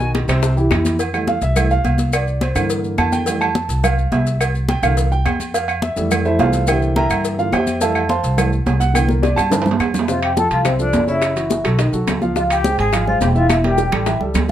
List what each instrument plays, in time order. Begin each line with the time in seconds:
Already playing: upright bass B1, flute G#5
0.00 grand piano D#3 D#4 F#4, high conga, maracas
0.15 high bongo, high conga, high timbale, maracas
0.28 upright bass C2, grand piano C3 C4 C5, high bongo, high conga, high timbale, claves, maracas
0.43 high bongo, high conga, maracas
0.57 grand piano E3 E4 G4, high bongo, high conga, maracas
0.71 upright bass F2, grand piano E3 E4 G4, high bongo, low bongo, high conga, high timbale, claves, maracas
0.85 high bongo, high conga, high timbale, maracas
0.99 cowbell, high conga, low agogo, maracas
1.13 grand piano E3 G3 A3, high conga, low agogo, claves, maracas
1.27 grand piano F5, cowbell, high conga, maracas
1.42 upright bass C2, grand piano E5, cowbell, high conga, maracas
1.56 grand piano E3 G3 A3, cowbell, high conga, low conga, low agogo, claves, maracas
1.70 grand piano F5, high conga, maracas
1.84 upright bass C2, cowbell, high conga, low agogo, maracas
1.98 cowbell, high conga, maracas
2.12 grand piano D5, cowbell, high conga, low agogo, claves, maracas
2.27 high conga, maracas
2.41 grand piano C5, cowbell, high conga, low agogo, maracas
2.55 upright bass G2, grand piano D3 E3 A#3, cowbell, high conga, low agogo, claves, maracas
2.70 cowbell, high conga, maracas
2.84 high conga, maracas
2.98 upright bass F2, grand piano A5, cowbell, high conga, low agogo, claves, maracas
3.12 grand piano G5, high conga, low agogo, maracas
3.26 grand piano E3 G3 A3, cowbell, high conga, low agogo, maracas
3.41 grand piano A5, high conga, low agogo, claves, maracas
3.55 cowbell, high conga, maracas
3.69 upright bass C2, cowbell, high conga, maracas
3.84 grand piano F5, cowbell, high conga, low conga, low agogo, claves, maracas
3.98 high conga, maracas
4.11 upright bass C2, grand piano E5, cowbell, high conga, low timbale, low agogo, maracas
4.27 cowbell, maracas
4.40 cowbell, high conga, low agogo, claves, maracas
4.54 high conga, maracas
4.69 grand piano G5, cowbell, high conga, low agogo, maracas
4.83 upright bass C2, grand piano D3 E3 A#3 F5, cowbell, high conga, low agogo, claves, maracas
4.97 cowbell, high conga, maracas
5.12 grand piano G5, high conga, maracas
5.25 upright bass F2, cowbell, high conga, low timbale, low agogo, claves, maracas
5.40 high conga, low agogo, maracas
5.54 grand piano F5, cowbell, high conga, low agogo, maracas
5.68 high conga, low agogo, claves, maracas
5.82 grand piano E5, cowbell, high conga, maracas
5.96 upright bass F2, grand piano E3 G3 A3, cowbell, high conga, maracas
6.11 cowbell, high conga, low conga, low agogo, claves, maracas
6.25 grand piano E4 A4 C5 E5, high conga, maracas
6.39 upright bass C2, grand piano F4 A4 C5 F5, cowbell, high conga, low timbale, low agogo, maracas
6.53 cowbell, high conga, maracas
6.67 grand piano D3 E3 A#3 G4 C5 E5 G5, cowbell, high conga, low agogo, claves, maracas
6.82 high conga, maracas
6.96 grand piano A#4 E5 G5 A#5, cowbell, high conga, low agogo, maracas
7.10 upright bass G2, cowbell, high conga, low agogo, claves, maracas
7.25 cowbell, high conga, maracas
7.38 grand piano D3 E3 A#3 F4 F5, high conga, maracas
7.52 upright bass F2, grand piano G4 C5 E5 G5, cowbell, high conga, low timbale, low agogo, claves, maracas
7.67 high conga, low agogo, maracas
7.81 grand piano E3 G3 A3 A4 E5 F5 A5, cowbell, high conga, low agogo, maracas
7.95 high conga, low agogo, claves, maracas
8.09 grand piano C5 F5 A5 C6, cowbell, high conga, maracas
8.23 upright bass C2, cowbell, high conga, maracas
8.37 grand piano E3 G3 A3, cowbell, high conga, low conga, low agogo, claves, maracas
8.52 high conga, maracas
8.66 upright bass C2, cowbell, high conga, low timbale, low agogo, maracas
8.80 grand piano F#5, cowbell, maracas
8.94 grand piano D3 E3 A#3 G5, cowbell, high conga, low agogo, claves, maracas
9.09 grand piano A#4, high conga, maracas
9.22 grand piano D5, cowbell, high bongo, high conga, low agogo, maracas
9.36 upright bass G2, grand piano A5, cowbell, high bongo, low agogo, claves, maracas
9.50 grand piano D3 E3 A#3, cowbell, low bongo, low conga, high timbale, maracas
9.62 high timbale
9.66 low bongo, low conga, maracas
9.71 low timbale
9.79 upright bass F2, cowbell, low timbale, low agogo, claves, maracas
9.94 low bongo, low conga, low agogo, maracas
9.99 low timbale
10.08 grand piano C3 C4 C5, flute F4, vibraphone F5, high bongo, maracas
10.23 flute G4, vibraphone G5, high conga, high timbale, claves
10.37 grand piano F3 F4 A4, flute A4, vibraphone A5, high bongo, high conga, low timbale, maracas
10.50 upright bass C2, flute F4, vibraphone F5, high bongo, high conga, high timbale, maracas
10.65 grand piano C3 C4 C5, flute C4, vibraphone C5, high bongo, high conga, low conga, high timbale, claves, maracas
10.79 grand piano F3 F4 A4, flute D4, vibraphone D5, high bongo, high conga, maracas
10.93 upright bass F#1, high bongo, low bongo, high conga, high timbale, low timbale, maracas
11.07 grand piano C#3 C#4 C#5, flute E4, vibraphone E5, high bongo, maracas
11.22 high bongo, high conga, high timbale, claves, maracas
11.36 grand piano E3 E4 F#4, high conga, high timbale, maracas
11.50 high bongo, high conga, low timbale, maracas
11.64 upright bass B1, grand piano F#3 F#4 A4, high bongo, high conga, high timbale, claves, maracas
11.79 grand piano D#3 D#4 D#5, high bongo, high conga, high timbale, maracas
11.93 upright bass B1, grand piano F#3 F#4 A4, high bongo, high conga, maracas
12.07 upright bass C#2, high bongo, low bongo, high conga, high timbale, low timbale, claves, maracas
12.22 grand piano F3 F4 F5, high bongo, high conga, maracas
12.36 grand piano F3 F4 F5, flute F4, vibraphone F5, high bongo, high conga, maracas
12.50 flute G4, vibraphone G5, high conga, high timbale, claves, maracas
12.64 grand piano G#3 G#4 C5, high bongo, high conga, low timbale, maracas
12.78 upright bass G#1, flute G#4, vibraphone G#5, high bongo, high conga, high timbale, maracas
12.93 grand piano F3 F4 F5, high bongo, high conga, low conga, high timbale, claves, maracas
13.07 grand piano G#3 G#4 C5, flute F4, vibraphone F5, high bongo, high conga, low conga
13.20 upright bass E1, flute G4, vibraphone G5, high bongo, low bongo, high conga, high timbale, low timbale, maracas
13.35 grand piano E3 E4 E5, flute F4, vibraphone F5, high bongo, maracas
13.50 flute E4, vibraphone E5, high bongo, high conga, high timbale, claves, maracas
13.64 grand piano G3 G4 A#4, flute G4, vibraphone G5, high conga, high timbale
13.78 high bongo, high conga, low timbale, maracas
13.92 upright bass A1, grand piano G3 G4 A4, high bongo, low conga, high timbale, claves, maracas
14.06 grand piano E3 E4 E5, high bongo, low conga, high timbale, maracas
14.20 upright bass C#2, grand piano G3 G4 A4, high bongo, low conga
14.34 upright bass D2, high bongo, low bongo, low conga, high timbale, low timbale, claves, maracas